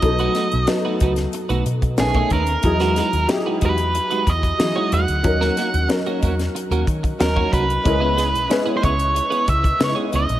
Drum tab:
HH |xxxxx-xxxxxxxxxx|xxxxx-xxxxxxx-xx|x-xxxxxxxxxxx-xx|x-xxx-xxxxxxx-xx|
SD |--o-o--o----o---|-oo-o-------o---|-oo-o--o----o---|--o-o-------o---|
BD |o-----o----o-oo-|o-----o---oo----|o-----o---oo-oo-|o-----o---oo----|